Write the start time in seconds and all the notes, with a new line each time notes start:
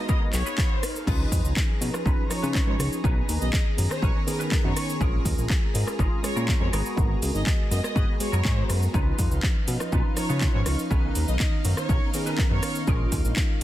Already playing: G#3 B3 D#4 F#4 F5 A#5
0.08 B3 F#4 G#4 A#4 D#5, kick, shaker
0.33 B1 C#5, clap, open hi-hat, shaker
0.46 B3 F#4 G#4 B4, shaker
0.58 kick, clap, shaker
0.83 cross-stick, open hi-hat, shaker
0.96 shaker
1.06 C#2 F3 C#4 D#4 F4 G#4 B4 A#5, kick, crash, shaker
1.32 F2, kick, open hi-hat, shaker
1.44 C#2, shaker
1.57 kick, clap, shaker
1.81 B2 F3 C#4 D#4 B4, open hi-hat, shaker
1.93 muted clean electric guitar stroke, cross-stick, shaker
2.05 B1 C#4 D#4 F4 B4, kick, shaker
2.30 F3 C#4 D#4 C#5 A#5, cross-stick, open hi-hat, shaker
2.42 C#3 C#4 D#4 F4 B4, shaker
2.55 kick, clap, shaker
2.67 G#2 F3 C#4 D#4 B4 C#5
2.79 C#2 C#5, cross-stick, open hi-hat, shaker
2.93 shaker
3.03 B1 D#3 B3 C#4 D#4 A#4 B4 A#5, kick, shaker
3.29 D#2, open hi-hat, shaker
3.41 B1 D#5, shaker
3.53 D#5, kick, clap, shaker
3.77 F#2 D#3 B3 C#4 A#5, open hi-hat, shaker
3.90 C#5, muted clean electric guitar stroke, cross-stick, shaker
4.02 B1 C#4 D#4 A#4 B4, kick, shaker
4.26 D#3 B3 C#4 G#4 A#4, open hi-hat, shaker
4.39 C#4 D#4 A#4 B4, shaker
4.52 kick, clap, shaker
4.64 F#2 D#3 B3 C#4 C#5 A#5
4.77 cross-stick, open hi-hat, shaker
4.89 shaker
5.00 A#1 G#3 C#4 F4 G#4 A#4, kick, shaker
5.25 D#2, kick, open hi-hat, shaker
5.38 A#1, shaker
5.50 kick, clap, shaker
5.74 G#2 G#3 C#4 F4 A#4, open hi-hat, shaker
5.87 muted clean electric guitar stroke, cross-stick, shaker
5.99 G#1 C#4 F4 G#4 A#4, kick, shaker
6.23 G#3 C#4 F4 G#4 C#5, cross-stick, open hi-hat, shaker
6.36 A#2 C#4 F4 G#4 A#4, shaker
6.48 kick, clap, shaker
6.60 F2 G#3 B3 F#4 A#4 C#5
6.72 G#1 B3 F#4 G#4 A#4 C#5, cross-stick, open hi-hat, shaker
6.86 shaker
6.96 G#1 G#3 B3 F#4 A#4, kick, shaker
7.22 C#2, open hi-hat, shaker
7.35 G#1 D#5, shaker
7.46 D#5, kick, clap, shaker
7.71 F#2 G#3 B3 F#4 A#4 D#5, open hi-hat, shaker
7.83 D#5, muted clean electric guitar stroke, cross-stick, shaker
7.95 G#1 B3 F#4 G#4 B4 D#5, kick, shaker
8.20 G#3 B3 F#4 G#4 C#5, open hi-hat, shaker
8.32 F#2 B3 F#4 G#4 A#4, shaker
8.45 G#2, kick, clap, shaker
8.57 G#3 B3 F#4 A#5
8.69 F#2, cross-stick, open hi-hat, shaker
8.82 shaker
8.93 C#2 F3 C#4 D#4 F4 B4 F5, kick, shaker
9.19 F2, kick, open hi-hat, shaker
9.31 C#2, shaker
9.43 kick, clap, shaker
9.67 B2 F3 C#4 D#4 B4, open hi-hat, shaker
9.80 muted clean electric guitar stroke, cross-stick, shaker
9.92 B1 C#4 D#4 F4 B4, kick, shaker
10.17 F3 C#4 D#4 C#5 A#5, cross-stick, open hi-hat, shaker
10.29 C#3 C#4 D#4 F4 B4, shaker
10.41 kick, clap, shaker
10.53 G#2 F3 C#4 D#4 B4 C#5
10.66 C#2 C#5, cross-stick, open hi-hat, shaker
10.79 shaker
10.90 B1 D#3 B3 C#4 D#4 A#4 B4 A#5, kick, shaker
11.15 D#2, open hi-hat, shaker
11.28 B1 D#5, shaker
11.40 D#5, kick, clap, shaker
11.64 F#2 D#3 B3 C#4 A#5, open hi-hat, shaker
11.77 C#5, muted clean electric guitar stroke, cross-stick, shaker
11.89 B1 C#4 D#4 A#4 C#5, kick, shaker
12.14 D#3 B3 C#4 G#4 A#4, open hi-hat, shaker
12.26 C#4 D#4 A#4 B4, shaker
12.38 kick, clap, shaker
12.51 F#2 D#3 B3 C#4 C#5 A#5
12.63 cross-stick, open hi-hat, shaker
12.75 shaker
12.87 A#1 G#3 C#4 F4 G#4 A#4, kick, shaker
13.12 D#2, kick, open hi-hat, shaker
13.25 A#1, shaker
13.36 kick, clap, shaker